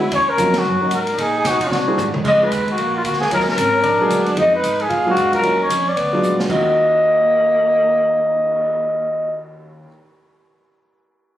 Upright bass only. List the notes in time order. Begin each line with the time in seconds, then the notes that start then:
Already playing: D2
0.11 D#2
0.29 muted upright bass stroke
0.38 F2
0.65 F#2
0.82 muted upright bass stroke
0.91 G#2
1.18 A#2
1.44 B2
1.71 C3
1.97 G#2
2.14 muted upright bass stroke
2.24 F2
2.51 D#2
2.77 A#1
3.04 D2
3.31 D#2
3.40 C#2
3.49 A#1
3.57 G#1
3.83 A#1
4.10 D2
4.37 F2
4.63 G#2
4.90 A#2
5.16 F#2
5.43 D#2
5.69 F2
5.97 D2
6.22 A#1
6.49 D#2